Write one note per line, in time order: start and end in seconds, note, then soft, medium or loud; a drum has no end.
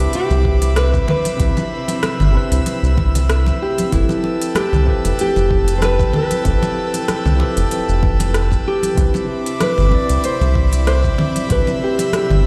0.00 1.36 C3 medium
0.00 1.38 C4 medium
0.00 3.88 C4 medium
0.00 1.39 D4 medium
0.00 1.41 E4 medium
0.00 0.14 G4 medium
0.00 1.42 B4 medium
0.00 3.88 E5 medium
0.00 3.88 B5 medium
0.00 1.37 D6 medium
0.13 0.77 G4 loud
0.13 closed hi-hat medium
0.13 shaker medium
0.30 0.99 C2 medium
0.30 muted conga medium
0.30 shaker soft
0.45 kick loud
0.62 closed hi-hat medium
0.62 muted conga medium
0.62 shaker medium
0.76 1.08 B4 loud
0.76 cross-stick loud
0.76 closed hi-hat soft
0.76 shaker medium
0.94 kick loud
0.94 shaker soft
1.08 2.31 B4 loud
1.08 muted conga medium
1.08 low conga medium
1.25 closed hi-hat medium
1.25 high conga medium
1.25 shaker medium
1.36 1.50 C2 loud
1.36 2.29 C3 medium
1.36 2.30 C4 medium
1.36 2.31 D4 medium
1.36 3.90 E6 medium
1.36 kick loud
1.36 closed hi-hat soft
1.36 muted conga medium
1.36 shaker medium
1.41 2.31 E4 medium
1.41 2.32 B4 medium
1.57 high conga loud
1.57 low conga medium
1.57 shaker soft
1.88 closed hi-hat medium
1.88 muted conga medium
1.88 shaker medium
2.03 cross-stick loud
2.03 closed hi-hat soft
2.03 high conga medium
2.03 shaker medium
2.20 2.38 G1 medium
2.20 muted conga soft
2.20 low conga medium
2.20 shaker soft
2.31 3.87 C3 medium
2.31 3.88 C4 medium
2.31 3.89 D4 medium
2.35 3.89 E4 medium
2.35 3.90 B4 medium
2.51 2.60 C2 medium
2.51 closed hi-hat medium
2.51 shaker medium
2.66 closed hi-hat soft
2.66 muted conga medium
2.66 shaker medium
2.83 3.51 C2 medium
2.83 shaker soft
2.97 kick loud
2.97 muted conga medium
2.97 low conga medium
3.15 closed hi-hat medium
3.15 low conga medium
3.15 shaker medium
3.30 cross-stick loud
3.30 closed hi-hat soft
3.30 shaker medium
3.46 muted conga medium
3.46 shaker soft
3.62 3.94 G4 medium
3.78 closed hi-hat medium
3.78 muted conga soft
3.78 high conga medium
3.78 shaker medium
3.89 4.82 F3 medium
3.89 4.82 C4 medium
3.89 4.83 E4 medium
3.89 4.83 G4 medium
3.89 8.93 B4 medium
3.89 8.93 G5 medium
3.89 8.93 A5 medium
3.89 8.93 E6 medium
3.89 kick loud
3.89 closed hi-hat soft
3.93 4.03 F1 loud
3.93 4.58 E4 medium
3.93 4.84 A4 medium
3.93 4.85 B4 medium
3.93 shaker medium
4.09 high conga loud
4.09 low conga medium
4.09 shaker soft
4.24 muted conga medium
4.42 closed hi-hat medium
4.42 shaker medium
4.55 5.20 G4 medium
4.55 cross-stick loud
4.55 closed hi-hat soft
4.55 muted conga medium
4.55 high conga loud
4.55 shaker medium
4.73 4.91 C2 medium
4.73 low conga medium
4.73 shaker soft
4.84 6.40 F3 medium
4.84 6.41 C4 medium
4.84 6.41 E4 medium
4.84 6.42 G4 medium
4.84 kick medium
4.89 6.42 A4 medium
4.89 6.43 B4 medium
5.04 5.13 F1 medium
5.04 closed hi-hat medium
5.04 muted conga medium
5.04 shaker medium
5.19 5.77 G4 loud
5.19 closed hi-hat soft
5.19 shaker medium
5.36 6.04 F1 loud
5.36 muted conga medium
5.36 shaker soft
5.51 kick loud
5.68 closed hi-hat medium
5.68 shaker medium
5.78 5.83 C5 medium
5.82 6.15 B4 loud
5.82 cross-stick loud
5.82 closed hi-hat soft
5.82 muted conga medium
5.82 shaker medium
5.99 kick loud
5.99 shaker soft
6.13 7.37 B4 medium
6.13 muted conga soft
6.13 low conga medium
6.31 closed hi-hat medium
6.31 high conga medium
6.31 shaker medium
6.42 6.56 F1 loud
6.42 7.35 F3 medium
6.42 7.35 C4 medium
6.42 7.36 E4 medium
6.42 7.36 G4 medium
6.42 kick loud
6.42 closed hi-hat soft
6.42 shaker medium
6.47 7.37 A4 medium
6.47 7.38 B4 medium
6.62 muted conga medium
6.62 high conga medium
6.62 low conga medium
6.62 shaker soft
6.94 closed hi-hat medium
6.94 muted conga soft
6.94 shaker medium
7.08 cross-stick medium
7.08 closed hi-hat soft
7.08 high conga medium
7.08 shaker medium
7.25 7.43 C2 medium
7.25 low conga medium
7.25 shaker soft
7.36 8.92 F3 medium
7.36 8.93 C4 medium
7.36 8.93 E4 medium
7.36 8.94 G4 medium
7.36 muted conga medium
7.41 8.95 A4 medium
7.41 8.95 B4 medium
7.57 7.65 F1 medium
7.57 closed hi-hat medium
7.57 shaker medium
7.71 closed hi-hat soft
7.71 muted conga medium
7.71 shaker medium
7.88 8.57 F1 medium
7.88 shaker soft
8.03 kick loud
8.03 low conga medium
8.19 closed hi-hat medium
8.19 muted conga medium
8.19 low conga medium
8.19 shaker medium
8.34 cross-stick medium
8.34 closed hi-hat soft
8.34 shaker medium
8.52 kick medium
8.52 muted conga soft
8.52 shaker soft
8.68 9.26 G4 loud
8.83 closed hi-hat medium
8.83 high conga medium
8.83 shaker medium
8.94 9.08 C2 loud
8.94 9.87 C3 medium
8.94 9.88 C4 medium
8.94 12.47 C4 medium
8.94 9.89 D4 medium
8.94 12.47 E5 medium
8.94 12.47 B5 medium
8.94 11.47 D6 medium
8.94 kick loud
8.94 closed hi-hat soft
8.94 shaker medium
8.99 9.89 E4 medium
8.99 9.90 B4 medium
9.14 muted conga medium
9.14 high conga medium
9.14 low conga medium
9.14 shaker soft
9.46 closed hi-hat medium
9.46 shaker medium
9.60 10.24 B4 loud
9.60 cross-stick medium
9.60 closed hi-hat soft
9.60 muted conga medium
9.60 high conga loud
9.60 shaker medium
9.78 9.96 G1 medium
9.78 low conga medium
9.78 shaker soft
9.89 11.45 C3 medium
9.89 11.46 C4 medium
9.89 11.46 D4 medium
9.89 kick medium
9.89 muted conga soft
9.94 11.47 E4 medium
9.94 11.48 D5 medium
10.09 10.18 C2 medium
10.09 closed hi-hat soft
10.09 shaker medium
10.24 10.86 C5 loud
10.24 closed hi-hat soft
10.24 shaker medium
10.41 11.09 C2 medium
10.41 muted conga medium
10.41 shaker soft
10.55 kick loud
10.72 closed hi-hat soft
10.72 muted conga soft
10.72 shaker medium
10.87 11.51 C5 loud
10.87 cross-stick medium
10.87 closed hi-hat soft
10.87 shaker medium
11.04 kick loud
11.04 shaker soft
11.18 muted conga medium
11.18 low conga medium
11.36 closed hi-hat medium
11.36 high conga medium
11.36 shaker medium
11.47 11.61 C2 loud
11.47 12.40 C3 medium
11.47 12.40 C4 medium
11.47 12.41 D4 medium
11.47 12.47 E6 medium
11.47 kick loud
11.47 closed hi-hat soft
11.47 muted conga medium
11.47 shaker medium
11.51 12.42 E4 medium
11.51 11.83 B4 loud
11.51 12.43 B4 medium
11.67 high conga medium
11.67 low conga medium
11.67 shaker soft
11.84 12.15 G4 medium
11.99 closed hi-hat medium
11.99 muted conga medium
11.99 shaker medium
12.13 12.47 G4 medium
12.13 cross-stick medium
12.13 closed hi-hat soft
12.13 high conga medium
12.13 shaker medium
12.30 12.47 G1 medium
12.30 muted conga medium
12.30 low conga medium
12.30 shaker soft
12.41 12.47 C3 medium
12.41 12.47 C4 medium